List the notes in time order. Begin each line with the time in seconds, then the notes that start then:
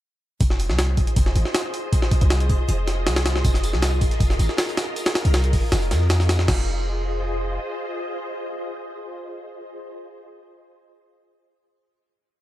0.41 F1 F4 G#4 C5 D#5, kick, open hi-hat
0.50 snare
0.60 open hi-hat
0.69 C2, snare
0.79 snare, open hi-hat
0.97 F1, kick, open hi-hat
1.07 closed hi-hat
1.16 F1, kick, open hi-hat
1.26 snare
1.35 G#1, open hi-hat
1.45 snare
1.55 snare, open hi-hat
1.74 open hi-hat
1.93 kick, open hi-hat
2.02 snare
2.11 kick, open hi-hat
2.21 C2, closed hi-hat
2.30 snare, open hi-hat
2.40 closed hi-hat
2.49 F1, kick, open hi-hat
2.69 F1, open hi-hat
2.88 snare, open hi-hat
3.07 C2, snare, open hi-hat
3.16 snare, open hi-hat
3.26 snare, open hi-hat
3.36 snare
3.44 F1 A#4, kick, open hi-hat, tambourine
3.54 snare, closed hi-hat
3.64 open hi-hat, tambourine
3.73 C2, snare
3.82 snare, open hi-hat, tambourine
4.01 F1, kick, open hi-hat, tambourine
4.11 snare, closed hi-hat
4.20 F1, kick, open hi-hat, tambourine
4.30 snare, closed hi-hat
4.39 G#1, open hi-hat, tambourine
4.49 snare
4.57 snare, open hi-hat, tambourine
4.69 closed hi-hat
4.77 snare, open hi-hat, tambourine
4.96 open hi-hat, tambourine
5.06 snare, open hi-hat
5.15 snare, open hi-hat, tambourine
5.25 C2, open hi-hat
5.34 snare, open hi-hat, tambourine
5.44 closed hi-hat
5.53 F1, kick, open hi-hat
5.72 F1, snare, open hi-hat, tambourine
5.82 closed hi-hat
5.91 F2, snare, open hi-hat, tambourine
6.01 snare
6.10 snare, open hi-hat, tambourine
6.20 snare, closed hi-hat
6.29 snare, open hi-hat, tambourine
6.39 snare
6.48 F1 F4 G#4 C5 D#5, kick, snare, crash